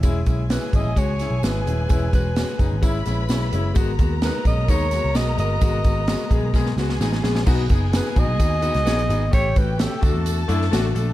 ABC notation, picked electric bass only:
X:1
M:4/4
L:1/16
Q:1/4=129
K:Elyd
V:1 name="Picked electric bass" clef=bass
E,,,2 B,,,3 z G,,, A,,, C,,3 B,,, G,,,2 D,,,2 | E,,,2 E,,,3 z F,,, G,,,3 A,,,2 B,,,2 F,,,2 | G,,,2 D,,3 z A,,, B,,, D,,3 C,, B,,,2 =G,,,2 | G,,,2 G,,,3 z A,,, B,,,3 C,,2 =A,,,2 ^A,,,2 |
B,,,2 F,,,3 z A,,, B,,, D,,3 C,, A,,,2 G,,,2 | =A,,,2 A,,,3 z =D,, E,,3 F,,2 A,,,2 ^A,,,2 |]